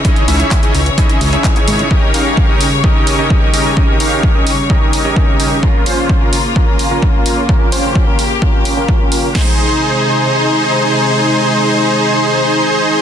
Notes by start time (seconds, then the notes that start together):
Already playing: C#3 E3 C#5
0.05 C#4 D#4 E4 G#4 D#5, kick, closed hi-hat
0.16 closed hi-hat
0.28 C#2 C#4 D#4 E4 G#4 E5, open hi-hat
0.40 closed hi-hat
0.51 kick, clap, closed hi-hat
0.63 C#4 D#4 E4 G#4 D#5, closed hi-hat
0.75 C#2, open hi-hat
0.86 closed hi-hat
0.98 C#4 D#4 E4 G#4 D#5, kick, closed hi-hat
1.09 closed hi-hat
1.21 C#2, open hi-hat
1.33 C#4 D#4 E4 G#4 E5, closed hi-hat
1.44 kick, clap, closed hi-hat
1.56 C#4 D#4 E4 G#4 C#5, clap, closed hi-hat
1.68 G#1, open hi-hat
1.79 closed hi-hat
1.91 G3 C#4 D#4 G4 A#4 D#5, kick
2.14 C#4 D#4 G4 A#4 F5, open hi-hat
2.37 kick
2.49 C#4 D#4 G4 A#4 D#5
2.61 open hi-hat
2.84 C#4 D#4 G4 A#4 D#5, kick
3.07 open hi-hat
3.19 C#4 D#4 G4 A#4 D#5
3.30 kick
3.54 C#4 D#4 G4 A#4 D#5, open hi-hat
3.77 C#4 D#4 G4 A#4 D#5, kick
4.00 C#4 D#4 G4 A#4 F5, open hi-hat
4.23 kick
4.35 C#4 D#4 G4 A#4 D#5
4.47 open hi-hat
4.70 C#4 D#4 G4 A#4 D#5, kick
4.93 open hi-hat
5.05 C#4 D#4 G4 A#4 D#5
5.16 kick
5.40 C#4 D#4 G4 A#4 D#5, open hi-hat
5.63 A#3 C#4 F4 A#4, kick
5.86 C#4 F4 C5, open hi-hat
6.09 kick
6.21 C#4 F4 A#4
6.33 open hi-hat
6.56 C#4 F4 A#4, kick
6.79 open hi-hat
6.91 C#4 F4 A#4
7.02 kick
7.26 C#4 F4 A#4, open hi-hat
7.49 C#4 F4 G4 A#4, kick
7.72 C#4 F4 C5, open hi-hat
7.95 kick
8.07 C#4 F4 A#4
8.19 open hi-hat
8.42 C#4 F4 A#4, kick
8.65 open hi-hat
8.77 C#4 F4 A#4
8.88 kick
9.12 C#4 F4 A#4, open hi-hat
9.35 C3 G#3 D#4 G#4 C5, kick, snare, crash